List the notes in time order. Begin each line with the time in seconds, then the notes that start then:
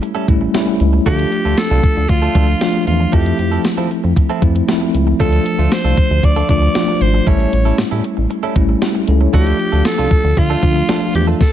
Already playing: G3 A3 C#4 E4
0.02 muted clean electric guitar stroke, closed hi-hat
0.15 G3 C#4 E4 A4
0.28 A1 G3 A3 C#4 E4, muted clean electric guitar stroke, kick, closed hi-hat
0.41 muted clean electric guitar stroke
0.54 G3 A3 C#4 E4, muted clean electric guitar stroke, snare, closed hi-hat
0.67 muted clean electric guitar stroke
0.80 C#2, closed hi-hat
0.93 muted clean electric guitar stroke
1.06 D2 F3 A3 D4 F4 G4 A4, kick, closed hi-hat
1.19 closed hi-hat
1.32 muted clean electric guitar stroke, closed hi-hat
1.45 D2 A3 D4 F4 A4
1.57 A4, snare, closed hi-hat
1.71 C2 A3 D4 F4 A4
1.83 kick, closed hi-hat
1.97 D2, muted clean electric guitar stroke
2.09 D2 F4, muted clean electric guitar stroke, kick, closed hi-hat
2.22 A3 D4 F4 A4
2.35 D2 F3 A3 D4 F4 A4, kick, closed hi-hat
2.48 muted clean electric guitar stroke
2.61 F3 A3 D4 F4, muted clean electric guitar stroke, snare, closed hi-hat
2.74 muted clean electric guitar stroke
2.87 E2 F4, closed hi-hat
3.00 muted clean electric guitar stroke
3.12 F2 F3 A3 C4 E4 G4 A4, kick, closed hi-hat
3.26 closed hi-hat
3.39 F2, muted clean electric guitar stroke, closed hi-hat
3.51 F3 C4 E4 A4
3.65 F3, muted clean electric guitar stroke, snare, closed hi-hat
3.77 F3 C4 E4 A4
3.91 muted clean electric guitar stroke, closed hi-hat
4.04 F2, muted clean electric guitar stroke
4.16 muted clean electric guitar stroke, kick, closed hi-hat
4.29 F3 C4 E4 A4
4.42 F2 F3 A3 C4 E4, muted clean electric guitar stroke, kick, closed hi-hat
4.55 muted clean electric guitar stroke, closed hi-hat
4.68 F3 A3 C4 E4, muted clean electric guitar stroke, snare, closed hi-hat
4.81 muted clean electric guitar stroke
4.94 C#2, closed hi-hat
5.07 muted clean electric guitar stroke
5.20 D2 F3 A3 D4 F4 A4, kick, closed hi-hat
5.33 closed hi-hat
5.46 muted clean electric guitar stroke, closed hi-hat
5.58 D2 A3 D4 F4 A4
5.72 C5, muted clean electric guitar stroke, snare, closed hi-hat
5.84 C2 A3 D4 F4 A4
5.97 muted clean electric guitar stroke, kick, closed hi-hat
6.11 D2, muted clean electric guitar stroke
6.23 D2 D5, muted clean electric guitar stroke, kick, closed hi-hat
6.36 A3 D4 F4 A4
6.49 D2 F3 A3 D4 F4 D5, kick, closed hi-hat
6.62 muted clean electric guitar stroke
6.75 F3 A3 D4 F4, muted clean electric guitar stroke, snare, closed hi-hat
6.88 muted clean electric guitar stroke
7.01 G#1 C5, closed hi-hat
7.14 muted clean electric guitar stroke
7.26 A1 G3 A3 C#4 E4 A4 C#5, kick, closed hi-hat
7.40 closed hi-hat
7.53 A1, closed hi-hat
7.65 G3 C#4 E4 A4
7.78 A2, muted clean electric guitar stroke, snare, closed hi-hat
7.91 A2 G3 C#4 E4 A4
8.04 muted clean electric guitar stroke, closed hi-hat
8.17 A1, muted clean electric guitar stroke
8.30 muted clean electric guitar stroke, closed hi-hat
8.43 G3 C#4 E4 A4
8.55 A1 G3 A3 C#4 E4, kick, closed hi-hat
8.69 muted clean electric guitar stroke
8.82 G4, muted clean electric guitar stroke, snare, closed hi-hat
8.95 muted clean electric guitar stroke
9.08 C#2 C#4 A4, closed hi-hat
9.21 E4 C#5, muted clean electric guitar stroke
9.33 D2 F3 A3 D4 F4 G4 A4, kick, closed hi-hat
9.47 closed hi-hat
9.59 muted clean electric guitar stroke, closed hi-hat
9.72 D2 A3 D4 F4 A4
9.85 A4, snare, closed hi-hat
9.98 C2 A3 D4 F4 A4
10.11 muted clean electric guitar stroke, kick, closed hi-hat
10.24 D2, muted clean electric guitar stroke
10.37 D2 F4, muted clean electric guitar stroke, kick, closed hi-hat
10.50 A3 D4 F4 A4
10.63 D2 F3 A3 D4 F4, muted clean electric guitar stroke, kick, closed hi-hat
10.76 muted clean electric guitar stroke
10.88 F3 A3 D4 F4 A4, snare, closed hi-hat
11.01 muted clean electric guitar stroke
11.14 E2 G4, muted clean electric guitar stroke, closed hi-hat
11.27 A3 D4 F4 A4
11.41 A4, kick, snare